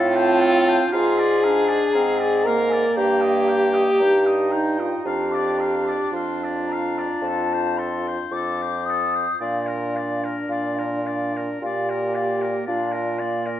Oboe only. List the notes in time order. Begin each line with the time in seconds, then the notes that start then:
Already playing: A4
0.16 C5
0.41 A4
0.69 C5
0.92 F5
1.18 D5
1.44 F5
1.68 D5
1.94 F5
2.20 D5
2.46 F5
2.72 D5
2.97 G5
3.21 D#5
3.49 G5
3.74 D#5
4.00 G5
4.26 D#5
4.52 G5
4.80 D#5
5.06 F5
5.34 D5
5.60 F5
5.88 D5
6.16 F5
6.44 D5
6.73 F5
6.98 D5
7.28 A4
7.54 C5
7.79 A4
8.08 C5
8.35 A4
8.62 C5
8.90 A4
9.15 C5
9.41 D5
9.67 A#4
9.96 D5
10.25 A#4
10.51 D5
10.79 A#4
11.07 D5
11.37 A#4
11.65 D5
11.90 A#4
12.15 D5
12.42 A#4
12.67 D5
12.92 A#4
13.19 D5
13.46 A#4